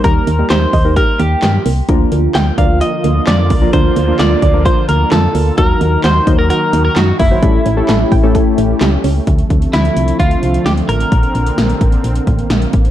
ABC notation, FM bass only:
X:1
M:4/4
L:1/16
Q:1/4=130
K:Bb
V:1 name="FM bass" clef=bass
E,,2 E,,2 E,,2 E,,3 z E,,2 G,,2 C,,2 | D,,2 D,,2 D,,2 D,,3 z D,,2 F,,2 C,,2 | D,,2 D,,2 D,,2 D,,3 z D,,2 F,,2 D,,2 | E,,2 E,,2 E,,2 E,,3 z E,,2 _G,,2 _G,,,2 |
A,,,2 A,,,2 A,,,2 A,,,3 z A,,,2 ^C,,2 C,,2 | [K:Dm] D,,2 D,,2 D,,2 C,,2 D,,2 C,,2 D,,2 A,,,2 | B,,,2 B,,,2 B,,,2 A,,,2 B,,,2 A,,,2 B,,,2 A,,,2 |]